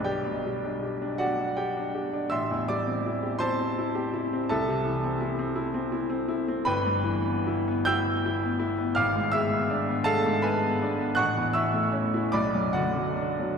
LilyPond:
<<
  \new Staff \with { instrumentName = "Grand piano" } { \time 6/8 \key a \dorian \tempo 4. = 54 <g' d'' g''>4. <fis' d'' fis''>8 <g' d'' g''>4 | <e'' c''' e'''>8 <d'' d'''>4 <c'' a'' c'''>4. | <a' e'' a''>4. r4. | \key e \dorian <b' g'' b''>4. <g'' e''' g'''>4. |
<eis'' d''' eis'''>8 <e'' e'''>4 <a' eis'' a''>8 <b' gis'' b''>4 | <fis'' cis''' fis'''>8 <e'' cis''' e'''>4 <d'' b'' d'''>8 <fis' d'' fis''>4 | }
  \new Staff \with { instrumentName = "Grand piano" } { \time 6/8 \key a \dorian b,,16 b,16 g16 d'16 g'16 d'16 g'16 d'8 d'16 g'16 d'16 | a,,16 e,16 g16 c'16 e'16 g'16 e'16 c'16 e'16 g'16 e'16 c'16 | c,16 c16 e16 c'16 e'16 c'16 e'16 c'16 e'16 c'16 e'16 c'16 | \key e \dorian g,,16 g,16 e16 b16 e'16 b16 e'16 b16 e'16 b16 e'16 b16 |
gis,,16 gis,16 gis16 b16 d'16 b16 gis16 gis,16 gis16 b16 d'16 b16 | a,,16 e,16 e16 a16 cis'16 e'16 b,,16 fis,16 d16 fis16 d'16 fis16 | }
>>